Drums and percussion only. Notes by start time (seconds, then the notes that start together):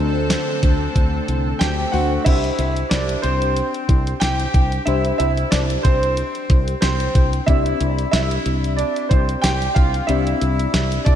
0.30 snare, closed hi-hat, tambourine
0.63 kick, closed hi-hat
0.96 kick, closed hi-hat
1.28 closed hi-hat
1.61 snare, closed hi-hat, tambourine
1.93 open hi-hat
2.26 kick, closed hi-hat, crash
2.44 closed hi-hat
2.59 closed hi-hat
2.77 closed hi-hat
2.91 snare, closed hi-hat, tambourine
3.09 closed hi-hat
3.24 closed hi-hat
3.42 closed hi-hat
3.57 closed hi-hat
3.74 closed hi-hat
3.89 kick, closed hi-hat
4.07 closed hi-hat
4.21 snare, closed hi-hat, tambourine
4.40 closed hi-hat
4.54 kick, closed hi-hat
4.72 closed hi-hat
4.87 closed hi-hat
5.05 closed hi-hat
5.20 closed hi-hat
5.37 closed hi-hat
5.52 snare, closed hi-hat, tambourine
5.70 closed hi-hat
5.85 kick, closed hi-hat
6.03 closed hi-hat
6.17 closed hi-hat
6.35 closed hi-hat
6.50 kick, closed hi-hat
6.68 closed hi-hat
6.82 snare, closed hi-hat, tambourine
7.00 closed hi-hat
7.15 kick, closed hi-hat
7.33 closed hi-hat
7.48 kick, closed hi-hat
7.66 closed hi-hat
7.81 closed hi-hat
7.99 closed hi-hat
8.13 snare, closed hi-hat, tambourine
8.31 closed hi-hat
8.46 closed hi-hat
8.64 closed hi-hat
8.79 closed hi-hat
8.96 closed hi-hat
9.11 kick, closed hi-hat
9.29 closed hi-hat
9.44 snare, closed hi-hat, tambourine
9.62 closed hi-hat
9.76 kick, closed hi-hat
9.94 closed hi-hat
10.09 closed hi-hat
10.27 closed hi-hat
10.41 closed hi-hat
10.59 closed hi-hat
10.74 snare, closed hi-hat, tambourine
10.92 closed hi-hat
11.06 kick, closed hi-hat